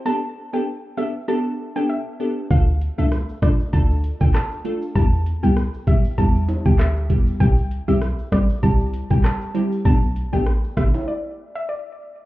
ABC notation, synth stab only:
X:1
M:4/4
L:1/16
Q:"Swing 16ths" 1/4=98
K:Gmix
V:1 name="Synth stab"
[B,DGA] z2 [B,DGA] z2 [B,DGA] z [B,DGA]3 [B,DGA]3 [B,DGA]2 | [A,DFA] z2 [A,DFA] z2 [A,DFA] z [A,DFA]3 [A,DFA]3 [A,DFA]2 | [G,B,EG] z2 [G,B,EG] z2 [G,B,EG] z [G,B,EG]3 [G,B,EG]3 [G,B,EG]2 | [G,CEG] z2 [G,CEG] z2 [G,CEG] z [G,CEG]3 [G,CEG]3 [G,CEG]2 |
[A,B,DG] z2 [A,B,DG] z2 [A,B,DG] z8 z |]